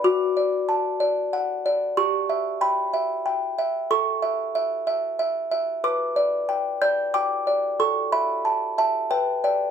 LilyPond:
\new Staff \with { instrumentName = "Music box" } { \time 3/4 \key a \mixolydian \tempo 4 = 93 << { d'''2. | cis'''4 b''4 r4 | cis'''2. | d'''4. g'''8 d'''4 |
cis'''8 b''4 a''8 g''4 | } \\ { fis'8 d''8 a''8 d''8 fis''8 d''8 | g'8 e''8 g''8 e''8 g''8 e''8 | a'8 e''8 e''8 e''8 e''8 e''8 | b'8 d''8 g''8 d''8 g''8 d''8 |
a'8 e''8 a''8 e''8 b'8 <d'' g''>8 | } >> }